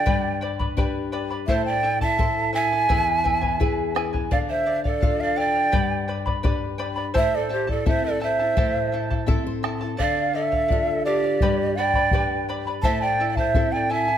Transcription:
Already playing: pan flute D5, quena G5
0.06 nylon-string guitar G2, charango G4 B4 D5 G5 B5, bombo low
0.41 charango B4 D5 G5 B5
0.59 charango B4 D5 B5, bombo low
0.77 nylon-string guitar D4 G4 B4, charango B4 D5 G5 B5, bombo low
1.12 charango B4 D5 G5 B5
1.30 charango B4 D5 B5
1.47 nylon-string guitar A2, charango E4 A4 C5 E5 A5, pan flute C5, quena E5, bombo low
1.65 pan flute D5, quena G5
1.83 charango E4 A4 E5 A5
2.01 charango E4 A4 A5, pan flute E5, quena A5, bombo low
2.18 charango E4 A4 E5 A5, nylon-string guitar E4 A4 C5, bombo low
2.53 charango E4 A4 E5 A5, pan flute E5, quena G#5
2.72 charango E4 A4 A5
2.89 nylon-string guitar E2, charango E4 G#4 B4 E5 G#5, bombo low
3.24 charango E4 B4 E5 G#5, bombo low
3.41 charango E4 B4 G#5, bombo low
3.60 charango E4 B4 E5 G#5, nylon-string guitar E4 G#4 B4, bombo low
3.95 charango E4 B4 E5 G#5, bombo rim
4.13 charango E4 B4 G#5, bombo low
4.31 nylon-string guitar D3, charango A4 D5 F5, pan flute D5, quena F5, bombo low
4.49 pan flute C5, quena E5
4.66 charango A4 D5 F5
4.84 pan flute A4, quena D5, charango D5 F5, bombo low
5.01 nylon-string guitar D4 F4 A4, charango A4 D5 F5, bombo low
5.21 pan flute D5, quena F5
5.36 charango A4 D5 F5, pan flute D5, quena G5
5.55 charango D5 F5
5.72 nylon-string guitar G2, charango G4 B4 D5 G5 B5, bombo low
6.08 charango B4 D5 G5 B5
6.26 charango B4 D5 B5, bombo low
6.43 nylon-string guitar D4 G4 B4, charango B4 D5 G5 B5, bombo low
6.78 charango B4 D5 G5 B5
6.96 charango B4 D5 B5
7.14 nylon-string guitar A2, charango E4 A4 C5 E5 A5, quena E5, bombo low
7.19 pan flute C5
7.35 pan flute A4, quena D5
7.49 charango E4 A4 E5 A5, pan flute G4, quena C5
7.67 charango E4 A4 A5, pan flute A4, quena D5, bombo low
7.86 nylon-string guitar C4 E4 A4, charango E4 A4 E5 A5, pan flute C5, quena E5, bombo low
8.04 pan flute A4, quena D5
8.20 charango E4 A4 E5 A5, pan flute C5, quena E5
8.39 charango E4 A4 A5
8.57 nylon-string guitar A2, charango E4 A4 C5 E5 A5, bombo low
8.92 charango E4 A4 E5 A5
9.10 charango E4 A4 A5, bombo low
9.27 nylon-string guitar C4 E4 A4 E5, charango E4 A4 E5 A5, bombo low
9.47 nylon-string guitar C5
9.63 charango E4 A4 E5 A5, bombo rim
9.81 charango E4 A4 A5
9.97 nylon-string guitar D3, charango A4 D5 F5, pan flute D5, quena F5, bombo low
10.33 charango A4 D5 F5, pan flute A4, quena E5
10.52 charango D5 F5, bombo low
10.68 nylon-string guitar D4 F4, charango A4 D5, bombo low
10.72 nylon-string guitar A4
11.05 pan flute G4, charango A4 D5 F5, quena D5
11.24 charango D5 F5
11.41 nylon-string guitar G2, charango G4 B4 D5 G5 B5, bombo low
11.76 charango B4 D5 G5 B5, pan flute D5, quena G5
11.94 charango B4 D5 B5, bombo low
12.11 nylon-string guitar D4 G4 B4, charango B4 D5 G5 B5, bombo low
12.49 charango B4 D5 G5 B5
12.67 charango B4 D5 B5
12.82 nylon-string guitar A2, charango E4 A4 C5 E5 A5, pan flute E5, quena A5, bombo low
13.02 pan flute D5, quena G5
13.20 charango E4 A4 E5 A5
13.30 pan flute D5, quena G5
13.36 charango E4 A4 A5, pan flute C5, quena E5, bombo low
13.54 nylon-string guitar C4 E4 A4, charango E4 A4 E5 A5, bombo low
13.72 pan flute D5, quena G5
13.89 charango E4 A4 E5 A5, pan flute E5, quena G#5
14.08 charango E4 A4 A5

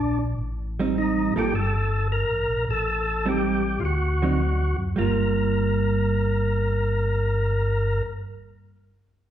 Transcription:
Already playing: tonewheel organ A#1 D4
0.38 tonewheel organ A1
0.79 hollow-body jazz guitar G3 C4 D#4
0.98 tonewheel organ D#4
1.36 tonewheel organ A1 G4, hollow-body jazz guitar G3 A#3 F4 A4
1.53 tonewheel organ G1 A4
2.12 tonewheel organ A#4
2.30 tonewheel organ A1
2.49 tonewheel organ A#1
2.69 tonewheel organ A1 A4
3.26 hollow-body jazz guitar G3 C4 D#4, tonewheel organ G4
3.80 tonewheel organ D2 F4
3.85 tonewheel organ F#4
4.22 hollow-body jazz guitar D3 F#3 C4 D#4
4.78 tonewheel organ F#2
4.96 tonewheel organ G1 A#4, hollow-body jazz guitar G3 A#3 F4

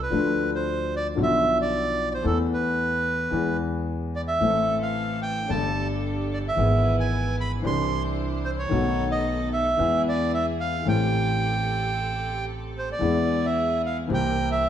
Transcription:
0.03 bandoneon B4
0.10 upright bass D2, grand piano D2 D3 F3 A3 F4
0.55 bandoneon C5
0.96 bandoneon D5
1.15 grand piano B1 B2 D3 F3 B3, upright bass B1
1.19 grand piano F4, bandoneon E5
1.61 bandoneon D5
2.11 bandoneon C5 D5
2.22 grand piano E2 E3 A3 B3, upright bass E2
2.26 grand piano A4, bandoneon A4
2.54 bandoneon B4
3.31 upright bass E2, grand piano E2 E3 G#3 B3
3.35 grand piano G#4
4.15 bandoneon D5
4.28 bandoneon E5
4.40 upright bass A1, grand piano A1 A2 E3 A3 C4, string section E3 C4 A4
4.45 grand piano A4
4.83 bandoneon F5
5.22 bandoneon G5
5.48 upright bass G1, grand piano G1 G2 G3 A3 D4, string section D4 G4 A4, bandoneon A5
5.52 grand piano A4
6.33 bandoneon D5
6.48 bandoneon E5
6.55 upright bass G#1, grand piano G#1 G#2 E3 G#3 B3 G#4, string section E4 G#4 B4
7.00 bandoneon G#5
7.41 bandoneon B5
7.62 grand piano C2 C3 E3 C4 D4, upright bass C2, string section D4 E4 C5
7.66 grand piano G4, bandoneon C6
8.45 bandoneon C5
8.59 bandoneon C#5
8.69 grand piano B1 B2 D#3 A3 B3 F#4, upright bass B1, string section B3 D#4 A4
9.11 bandoneon D#5
9.53 bandoneon E5
9.77 grand piano E2 E3 G#3 B3 G#4, upright bass E2, string section B3 E4 G#4
10.09 bandoneon D5
10.34 bandoneon E5
10.61 bandoneon F5
10.85 upright bass A1, grand piano A1 A2 E3 A3 C4, string section C4 G4 A4, bandoneon G5
10.89 grand piano G4
12.78 bandoneon C5
12.92 bandoneon D5
12.99 grand piano E2 E3 G#3 B3, upright bass E2, string section E4 G#4
13.03 grand piano G#4
13.45 bandoneon E5
13.86 bandoneon F5
14.07 grand piano C2 C3 E3 A#3 C4, upright bass C2, string section C4 E4 A#4
14.11 grand piano G4, bandoneon G5
14.51 bandoneon E5

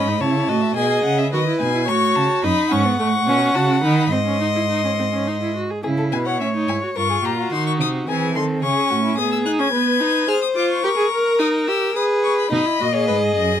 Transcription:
Already playing: cello G#2, violin D#5 B5
0.08 viola D#4
0.20 cello C#3, viola E4, violin C#5 A5
0.49 cello A2, viola F#4, violin D#5
0.62 violin E5
0.76 cello B2, viola G#4, violin D#5 G#5
1.04 cello C#3, violin F#5
1.18 violin E5
1.32 cello D#3, viola F#4, violin B4 D#5
1.47 viola E4
1.60 cello B2, viola D#4, violin G#5
1.75 viola E4
1.88 cello A2, viola F#4, violin C#5 C#6
2.15 cello C#3, violin A5
2.44 cello F#2, viola D#4, violin D#5 B5
2.71 cello G#2, viola C#4, violin F#5 C#6
2.85 viola B3
2.99 cello A2, viola A3, violin C#6
3.27 cello B2, viola C#4
3.55 cello C#3, viola F#4, violin A5
3.83 cello D#3, viola D#4, violin B5
4.11 cello G#2, viola C4, violin D#5 C6
4.27 viola C#4
4.41 viola D#4
4.55 viola E4
4.70 viola D#4
4.84 viola C#4
4.99 viola C4
5.13 viola C#4
5.28 viola D#4
5.42 viola E4
5.56 viola F#4
5.70 viola G#4
5.83 cello C#3, viola E4, violin G#4
5.97 violin A4
6.12 cello B2, violin B4 G#5
6.26 violin C#5 F#5
6.40 cello A2, viola C#4, violin E5
6.55 viola D#4
6.68 cello G#2, viola E4, violin G#5
6.83 viola F#4
6.96 cello G2, viola F4, violin A#4 C#6
7.10 violin G#4
7.23 cello A#2, violin G4 A#5
7.38 violin F#4
7.52 cello D#3, viola D#4, violin C6
7.67 violin C#6
7.80 cello C3, violin D#6
8.07 cello E3, viola C4, violin G#4 G#5
8.35 cello D#3, violin A4 C6
8.63 cello C#3, viola C#4, violin G#4 C#6
8.90 cello A2, violin F#4
9.04 violin E4
9.18 viola B3, violin G#4 D#6
9.32 violin E6
9.45 viola D#4, violin F#6
9.59 viola C#4, violin G#6
9.73 viola B3, violin B4
10.00 viola D#4
10.28 viola G#4, violin C5 F6
10.42 violin D#6
10.56 viola F4, violin D6
10.70 violin C#6
10.83 viola G4, violin A#4
10.97 viola G#4
11.11 viola A#4
11.39 viola D#4, violin D#6
11.68 viola G4, violin E6
11.95 viola G#4, violin B4 D#6
12.23 violin C#6
12.38 violin B5
12.52 cello B2, viola D#4, violin D#5 B5
12.66 viola E4
12.80 cello A#2, viola F#4, violin D#5
12.94 viola G#4, violin C#5
13.08 cello G#2, violin B4
13.36 cello F#2, violin D#5

